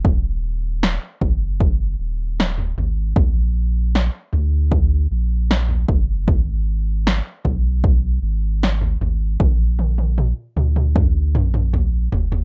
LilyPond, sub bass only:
\new Staff \with { instrumentName = "Sub bass" } { \clef bass \time 4/4 \key bes \phrygian \tempo 4 = 77 ees,,4~ ees,,16 r16 ges,,4 ees,,4 aes,,8 | bes,,4~ bes,,16 r16 d,4 bes,,4 ges,,8 | aes,,4~ aes,,16 r16 ces,4 aes,,4 aes,,8 | bes,,4~ bes,,16 r16 d,4 bes,,4 f,,8 | }